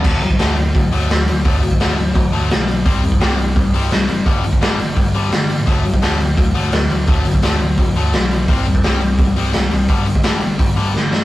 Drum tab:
CC |x---------------|----------------|----------------|----------------|
HH |--o-o-o-o-o-o-o-|o-o-o-o-o-o-o-o-|o-o-o-o-o-o-o-o-|o-o-o-o-o-o-o-o-|
SD |----o-------o---|----o-------o---|----o-------o---|----o-------o---|
BD |o--o----o-------|o--o----o-------|o--o----o-------|o--o----o-------|

CC |----------------|----------------|----------------|----------------|
HH |o-o-o-o-o-o-o-o-|o-o-o-o-o-o-o-o-|o-o-o-o-o-o-o-o-|o-o-o-o-o-o-----|
SD |----o-------o---|----o-------o---|----o-------o---|----o-------o-o-|
BD |o--o----o-------|o--o----o-------|o--o----o-------|o--o----o-------|